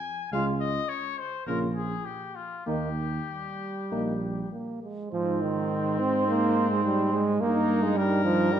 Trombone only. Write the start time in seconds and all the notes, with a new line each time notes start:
0.33 C#3
1.47 C#3
2.66 D#3
3.29 G3
4.53 A#3
4.83 G#3
5.12 F3
5.42 D#3
6.00 C4
6.28 A#3
6.71 G#3
6.85 G3
7.12 G#3
7.41 A#3
7.83 G#3
7.97 G3
8.24 F3
8.52 G3